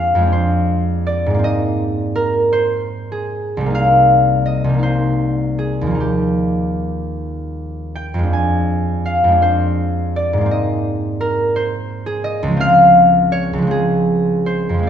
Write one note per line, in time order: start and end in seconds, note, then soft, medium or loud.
0.00 0.14 F2 soft
0.00 0.17 G#3 soft
0.00 0.21 C4 soft
0.00 0.26 D4 soft
0.00 1.46 F5 medium
0.00 3.09 G#5 medium
0.15 1.38 F2 soft
0.15 1.29 G#3 soft
0.22 1.38 C4 soft
0.27 1.44 D4 soft
0.32 2.51 C5 medium
1.07 1.47 D5 medium
1.26 3.68 G#2 medium
1.26 3.70 G#3 soft
1.34 3.65 A#3 soft
1.39 5.29 C4 soft
1.44 4.44 D#5 medium
2.16 6.06 A#4 medium
2.53 4.82 C5 medium
3.12 3.77 G#4 medium
3.57 4.63 C2 soft
3.57 4.68 G3 soft
3.66 4.73 A#3 soft
3.70 4.78 D#4 soft
3.75 4.99 F5 medium
4.46 8.35 D#5 medium
4.64 5.92 C2 soft
4.69 8.29 G3 soft
4.74 5.90 A#3 soft
4.79 5.93 D#4 soft
4.79 6.02 C5 medium
5.59 6.27 G#4 medium
5.81 8.28 D#2 soft
5.87 9.77 F3 soft
5.91 8.33 A#3 soft
5.91 8.34 D#4 soft
6.00 8.37 G4 soft
7.95 8.36 G5 medium
8.14 9.23 F2 soft
8.19 9.27 G#3 soft
8.24 9.31 D4 soft
8.33 12.23 G#5 medium
9.06 10.55 F5 medium
9.24 10.45 F2 soft
9.24 10.36 G#3 soft
9.32 10.49 D4 soft
9.42 11.55 C5 medium
10.16 10.55 D5 medium
10.33 12.53 G#2 soft
10.37 12.50 G#3 soft
10.37 12.57 A#3 soft
10.46 12.55 C4 soft
10.51 12.23 D#5 medium
11.21 12.62 A#4 medium
11.56 14.45 C5 medium
12.06 13.70 G#4 medium
12.24 12.62 D#5 medium
12.43 13.52 C#2 medium
12.48 13.57 F3 soft
12.48 13.61 G#3 soft
12.57 13.66 C4 soft
12.57 14.90 F5 medium
13.32 14.90 C#5 medium
13.53 14.83 C#2 soft
13.58 14.73 F3 soft
13.62 14.77 G#3 soft
13.67 14.81 C4 soft
13.67 14.90 G#4 medium
14.46 14.90 C5 medium
14.69 14.90 F2 soft
14.74 14.90 F3 soft
14.78 14.90 G#3 soft
14.83 14.90 C4 soft